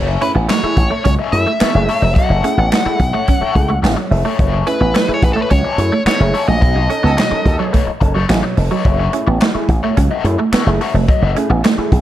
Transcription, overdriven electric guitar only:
0.00 0.20 C#4 medium
0.00 0.20 E4 medium
0.00 0.20 A4 medium
0.00 0.20 C#5 medium
0.36 muted overdriven electric guitar stroke soft
0.49 muted overdriven electric guitar stroke soft
0.64 muted overdriven electric guitar stroke soft
0.91 1.04 C#4 medium
0.91 1.05 E4 medium
0.91 1.05 A4 medium
0.91 1.05 C#5 medium
1.06 muted overdriven electric guitar stroke soft
1.19 1.32 C#4 medium
1.19 1.33 E4 medium
1.19 1.33 A4 medium
1.19 1.34 D#5 medium
1.34 muted overdriven electric guitar stroke soft
1.47 muted overdriven electric guitar stroke soft
1.61 1.77 C#4 medium
1.61 1.75 E4 medium
1.61 1.74 A4 medium
1.61 1.74 C#5 medium
1.75 muted overdriven electric guitar stroke medium
1.89 2.01 C#4 medium
1.89 2.02 E4 medium
1.89 2.02 A4 medium
1.89 2.02 C#5 medium
2.03 muted overdriven electric guitar stroke medium
2.17 2.42 C#4 medium
2.17 2.43 E4 medium
2.17 2.43 A4 loud
2.17 2.43 D#5 medium
2.58 muted overdriven electric guitar stroke soft
2.73 muted overdriven electric guitar stroke soft
2.86 muted overdriven electric guitar stroke soft
3.13 3.26 C#4 medium
3.13 3.26 E4 medium
3.13 3.27 A4 medium
3.13 3.27 C#5 medium
3.27 muted overdriven electric guitar stroke soft
3.41 3.54 C#4 medium
3.41 3.54 E4 medium
3.41 3.54 A4 medium
3.41 3.55 C#5 medium
3.55 muted overdriven electric guitar stroke soft
3.68 muted overdriven electric guitar stroke medium
3.82 muted overdriven electric guitar stroke soft
3.96 muted overdriven electric guitar stroke medium
4.25 4.37 C#4 medium
4.25 4.38 E4 medium
4.25 4.38 A4 medium
4.25 4.38 C#5 medium
4.38 4.64 C#4 medium
4.38 4.65 E4 medium
4.38 4.65 A4 medium
4.38 4.65 C#5 medium
4.80 muted overdriven electric guitar stroke soft
4.94 muted overdriven electric guitar stroke soft
5.08 muted overdriven electric guitar stroke soft
5.37 5.49 C#4 medium
5.37 5.49 E4 medium
5.37 5.50 A4 medium
5.37 5.50 C#5 medium
5.50 muted overdriven electric guitar stroke soft
5.64 5.77 C#4 medium
5.64 5.78 E4 medium
5.64 5.78 A4 medium
5.64 5.79 D#5 medium
5.79 muted overdriven electric guitar stroke soft
5.92 muted overdriven electric guitar stroke soft
6.06 6.22 C#4 medium
6.06 6.20 E4 medium
6.06 6.19 A4 medium
6.06 6.19 C#5 loud
6.20 muted overdriven electric guitar stroke soft
6.34 6.46 C#4 medium
6.34 6.47 E4 medium
6.34 6.47 A4 medium
6.34 6.46 C#5 medium
6.47 muted overdriven electric guitar stroke soft
6.61 6.87 B3 medium
6.61 6.88 D#4 medium
6.61 6.88 A4 medium
6.61 6.88 D#5 medium
7.03 muted overdriven electric guitar stroke soft
7.17 muted overdriven electric guitar stroke soft
7.31 muted overdriven electric guitar stroke medium
7.59 7.71 B3 medium
7.59 7.72 D#4 medium
7.59 7.72 A4 medium
7.59 7.72 C#5 medium
7.72 7.89 B3 medium
7.72 7.89 D#4 medium
7.72 7.89 A4 medium
7.72 7.89 C#5 loud
8.00 muted overdriven electric guitar stroke soft
8.14 8.28 B3 soft
8.14 8.28 D#4 medium
8.14 8.28 A4 medium
8.14 8.27 C#5 medium
8.29 muted overdriven electric guitar stroke soft
8.43 muted overdriven electric guitar stroke medium
8.71 8.84 B3 medium
8.71 8.85 D#4 medium
8.71 8.85 A4 medium
8.71 8.85 C#5 medium
8.85 9.11 A3 medium
8.85 9.11 E4 medium
8.85 9.11 F#4 medium
8.85 9.11 C#5 loud
9.27 muted overdriven electric guitar stroke soft
9.41 muted overdriven electric guitar stroke soft
9.54 muted overdriven electric guitar stroke medium
9.83 9.95 A3 medium
9.83 9.95 E4 medium
9.83 9.96 F#4 medium
9.83 9.96 C#5 medium
9.96 muted overdriven electric guitar stroke soft
10.11 10.23 A3 medium
10.11 10.24 E4 medium
10.11 10.24 F#4 medium
10.11 10.25 D#5 medium
10.25 muted overdriven electric guitar stroke soft
10.38 muted overdriven electric guitar stroke soft
10.53 10.68 A3 medium
10.53 10.66 E4 medium
10.53 10.66 F#4 medium
10.53 10.65 C#5 medium
10.66 muted overdriven electric guitar stroke soft
10.81 10.93 A3 medium
10.81 10.93 E4 medium
10.81 10.93 F#4 medium
10.81 10.94 C#5 medium
10.95 muted overdriven electric guitar stroke soft
11.08 11.34 A3 medium
11.08 11.34 E4 medium
11.08 11.34 F#4 loud
11.08 11.34 D#5 loud
11.50 muted overdriven electric guitar stroke soft
11.64 muted overdriven electric guitar stroke soft
11.78 muted overdriven electric guitar stroke soft

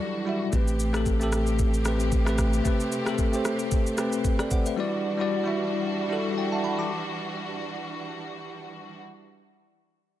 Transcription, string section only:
0.00 0.49 E3 medium
0.00 0.49 G3 medium
0.00 0.49 D4 medium
0.00 0.49 F#4 medium
0.53 4.73 C3 medium
0.53 4.74 A3 medium
0.53 4.73 C4 medium
0.53 4.73 G4 medium
4.78 8.98 E3 medium
4.78 8.98 G3 medium
4.78 8.98 D4 medium
4.78 8.98 F#4 medium

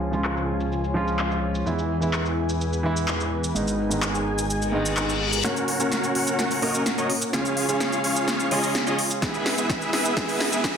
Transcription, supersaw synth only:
5.44 5.77 C#4 medium
5.44 5.77 F#4 medium
5.44 5.77 A#4 medium
5.44 5.77 C#5 medium
5.44 5.77 F#5 medium
5.80 6.12 C#4 medium
5.80 6.12 F#4 medium
5.80 6.12 A#4 medium
5.80 6.12 C#5 medium
5.80 6.12 F#5 loud
6.15 6.60 C#4 medium
6.15 6.60 F#4 medium
6.15 6.60 A#4 medium
6.15 6.60 C#5 medium
6.15 6.60 F#5 medium
6.62 6.83 C#4 loud
6.62 6.83 F#4 medium
6.62 6.83 A#4 medium
6.62 6.83 C#5 medium
6.62 6.83 D#5 loud
6.98 7.11 C#4 medium
6.98 7.11 F#4 medium
6.98 7.11 A#4 medium
6.98 7.11 C#5 medium
6.98 7.11 D#5 loud
7.33 7.66 C#4 medium
7.33 7.66 F4 medium
7.33 7.66 G#4 medium
7.33 7.66 C#5 medium
7.33 7.66 F5 loud
7.69 8.01 C#4 medium
7.69 8.01 F4 medium
7.69 8.01 G#4 medium
7.69 8.01 C#5 medium
7.69 8.01 F5 medium
8.04 8.49 C#4 medium
8.04 8.49 F4 medium
8.04 8.49 G#4 medium
8.04 8.49 C#5 medium
8.04 8.49 F5 medium
8.51 8.72 C#4 loud
8.51 8.72 F4 medium
8.51 8.72 G#4 medium
8.51 8.72 C#5 medium
8.51 8.72 D#5 loud
8.87 9.00 C#4 medium
8.87 9.00 F4 medium
8.87 9.00 G#4 medium
8.87 9.00 C#5 medium
8.87 9.00 D#5 loud
9.22 9.55 B3 medium
9.22 9.55 E4 medium
9.22 9.55 G#4 medium
9.22 9.55 B4 medium
9.22 9.55 E5 medium
9.58 9.90 B3 medium
9.58 9.90 E4 medium
9.58 9.90 G#4 medium
9.58 9.90 B4 medium
9.58 9.90 E5 medium
9.93 10.15 B3 medium
9.93 10.15 E4 medium
9.93 10.15 G#4 medium
9.93 10.15 B4 medium
9.93 10.15 E5 medium
10.17 10.49 B3 medium
10.17 10.49 E4 medium
10.17 10.49 G#4 medium
10.17 10.49 B4 medium
10.17 10.49 E5 medium
10.52 10.77 B3 medium
10.52 10.77 E4 medium
10.52 10.77 G#4 medium
10.52 10.77 B4 medium
10.52 10.77 E5 medium

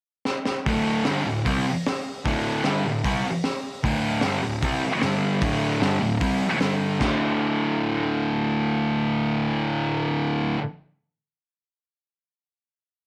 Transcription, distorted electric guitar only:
0.67 1.05 D2 medium
0.67 1.06 A2 loud
0.67 1.05 D3 loud
1.05 1.25 G2 medium
1.05 1.25 D3 medium
1.05 1.26 G3 loud
1.25 1.42 D2 medium
1.25 1.42 A2 medium
1.45 1.65 C3 medium
1.45 1.65 G3 medium
1.45 1.66 C4 medium
2.25 2.64 D2 medium
2.25 2.65 A2 loud
2.25 2.64 D3 loud
2.64 2.84 G2 medium
2.64 2.85 D3 loud
2.64 2.85 G3 loud
2.86 3.01 D2 medium
2.86 3.02 A2 medium
3.05 3.24 C3 medium
3.05 3.24 G3 loud
3.05 3.25 C4 medium
3.83 4.23 D2 medium
3.83 4.23 A2 medium
3.83 4.24 D3 loud
4.23 4.43 G2 loud
4.23 4.43 D3 medium
4.23 4.44 G3 medium
4.43 4.59 D2 medium
4.43 4.59 A2 medium
4.63 4.83 C3 medium
4.63 4.83 G3 medium
4.63 4.83 C4 medium
5.03 5.41 G2 medium
5.03 5.42 D3 medium
5.03 5.43 G3 loud
5.42 5.80 D2 loud
5.42 5.82 A2 loud
5.42 5.81 D3 loud
5.81 6.00 G2 medium
5.81 6.00 D3 medium
5.81 6.01 G3 medium
6.00 6.17 D2 medium
6.00 6.17 A2 medium
6.21 6.40 C3 medium
6.21 6.41 G3 loud
6.21 6.41 C4 medium
6.60 6.99 G2 medium
6.60 7.00 D3 medium
6.60 7.00 G3 loud
7.00 10.56 D2 loud
7.00 10.58 A2 medium
7.00 10.60 D3 loud

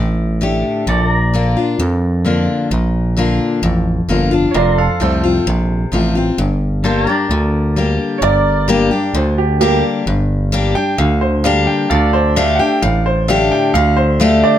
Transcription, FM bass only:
0.00 0.64 A1 medium
0.87 1.56 A#1 medium
1.79 2.48 F2 medium
2.71 3.40 A#1 medium
3.62 4.02 A1 medium
4.08 4.48 G1 medium
4.55 4.89 F1 medium
5.00 5.39 C2 medium
5.47 5.86 A#1 medium
5.92 6.31 A1 medium
6.38 7.07 G1 medium
7.30 7.99 D2 medium
8.22 8.91 G1 loud
9.14 9.83 D2 medium
10.06 10.75 G1 loud
10.98 11.67 D2 medium
11.91 12.60 D2 medium
12.82 13.52 A1 medium
13.74 14.43 D2 medium

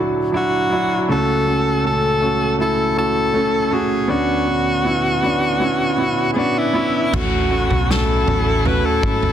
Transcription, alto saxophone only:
0.37 1.07 F#4 medium
1.12 1.82 A4 medium
1.86 2.56 A4 medium
2.61 2.95 A4 medium
2.98 3.75 A4 medium
3.73 4.12 G#4 medium
4.10 6.32 F#4 medium
6.33 6.40 G#4 soft
6.38 6.60 F#4 medium
6.58 7.17 E4 medium
7.15 7.92 F#4 medium
7.91 8.68 A4 medium
8.67 8.87 B4 medium
8.85 9.32 A4 medium

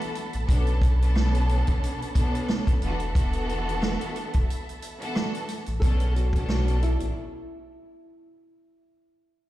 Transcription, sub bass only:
0.34 0.45 A1 loud
0.49 1.63 B1 loud
1.68 1.79 A1 loud
2.82 3.97 E1 loud
4.35 4.45 E1 loud
5.67 5.78 A1 medium
5.82 6.97 B1 loud
7.01 7.12 A1 medium

